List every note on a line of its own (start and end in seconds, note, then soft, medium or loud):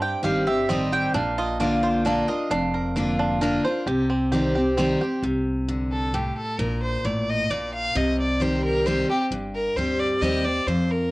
0.00 0.14 G2 medium
0.00 0.65 G2 loud
0.00 0.43 C4 medium
0.00 0.23 G4 medium
0.00 0.23 G5 medium
0.23 0.62 G1 medium
0.23 0.46 D#3 medium
0.23 0.46 G3 medium
0.23 0.47 C4 medium
0.23 0.46 G4 medium
0.23 0.45 G4 medium
0.23 0.46 F5 medium
0.47 0.69 C4 soft
0.47 0.68 G4 medium
0.47 0.91 G4 medium
0.47 0.69 E5 medium
0.69 1.08 A1 medium
0.69 1.12 D#3 medium
0.69 1.13 G3 medium
0.69 1.14 C4 medium
0.69 1.13 C4 loud
0.69 1.13 G4 loud
0.69 0.92 D#5 medium
0.92 1.15 G4 medium
0.92 1.14 G5 loud
1.14 2.21 A#1 loud
1.14 2.01 A#2 loud
1.14 2.05 D4 medium
1.14 1.37 F5 medium
1.38 1.82 F4 medium
1.38 1.60 D#5 loud
1.60 2.03 D3 medium
1.60 2.03 A#3 medium
1.60 2.04 D4 medium
1.60 2.04 F4 medium
1.60 2.24 A#4 medium
1.60 1.82 D5 medium
1.83 2.46 F4 medium
1.83 2.05 C5 medium
2.05 2.28 D3 medium
2.05 2.28 A#3 loud
2.05 2.50 D4 medium
2.05 2.28 D4 medium
2.05 2.27 F4 loud
2.05 2.28 D5 medium
2.28 2.51 D4 soft
2.28 2.50 F4 soft
2.28 2.73 A#4 medium
2.28 2.50 D#5 medium
2.50 3.57 F1 medium
2.50 3.37 F2 loud
2.50 3.15 D4 medium
2.50 3.83 F5 medium
2.74 3.37 A#4 medium
2.96 3.39 D3 medium
2.96 3.60 A#3 medium
2.96 3.40 A#3 medium
2.96 3.40 D4 medium
2.96 3.40 F4 medium
3.19 3.83 D4 medium
3.41 3.64 D3 loud
3.41 3.65 A#3 medium
3.41 3.65 D4 loud
3.41 3.64 F4 loud
3.41 3.86 A#4 medium
3.65 3.87 D4 soft
3.65 3.86 F4 medium
3.65 3.87 C5 medium
3.86 4.93 C2 loud
3.86 4.74 C3 loud
3.86 4.31 G4 medium
4.10 4.73 C4 medium
4.32 4.55 D#3 medium
4.32 4.55 G3 medium
4.32 4.55 C4 medium
4.32 4.54 G4 medium
4.55 4.78 C4 medium
4.55 5.00 G4 medium
4.55 4.77 G4 soft
4.77 5.00 D#3 loud
4.77 5.00 G3 medium
4.77 5.23 C4 medium
4.77 5.01 C4 loud
4.77 5.00 G4 loud
5.01 5.23 C4 soft
5.01 5.23 G4 medium
5.01 5.22 G4 medium
5.22 6.29 C2 loud
5.22 6.10 C3 loud
5.68 6.12 D3 medium
5.92 6.16 A4 medium
6.14 6.57 A2 medium
6.14 6.37 G4 medium
6.37 6.62 A4 medium
6.59 6.94 A#1 loud
6.59 7.45 A#2 loud
6.59 6.82 A#4 medium
6.83 7.07 C5 medium
7.04 7.43 A1 medium
7.04 7.48 A2 medium
7.04 7.31 D5 medium
7.29 7.52 D#5 loud
7.50 7.88 A#1 medium
7.50 7.93 A#2 medium
7.50 7.73 D5 medium
7.74 7.98 F5 loud
7.95 9.02 C2 medium
7.95 8.82 C3 medium
7.95 8.19 D#5 medium
8.20 8.43 D5 medium
8.40 8.83 D#3 medium
8.40 8.84 G3 medium
8.40 8.84 C4 medium
8.40 8.84 G4 medium
8.40 8.64 C5 medium
8.65 8.88 A#4 loud
8.86 9.08 D#3 medium
8.86 9.09 G3 medium
8.86 9.09 C4 medium
8.86 9.08 G4 loud
8.86 9.09 C5 loud
9.09 9.32 C4 medium
9.09 9.30 G4 medium
9.09 9.23 G4 loud
9.31 9.67 G1 medium
9.31 10.18 G2 medium
9.55 9.78 A#4 loud
9.76 10.15 D2 medium
9.76 10.20 G3 medium
9.76 10.21 C4 medium
9.76 10.21 G4 medium
9.76 10.01 C5 medium
10.00 10.23 D5 loud
10.21 10.60 D#2 medium
10.21 10.44 D#3 medium
10.21 10.45 G3 medium
10.21 10.45 C4 medium
10.21 10.44 G4 loud
10.21 10.46 D#5 medium
10.45 10.67 C4 soft
10.45 10.67 G4 medium
10.45 10.69 D5 loud
10.67 11.11 F2 loud
10.67 11.11 F2 medium
10.67 10.92 C5 medium
10.91 11.11 A#4 medium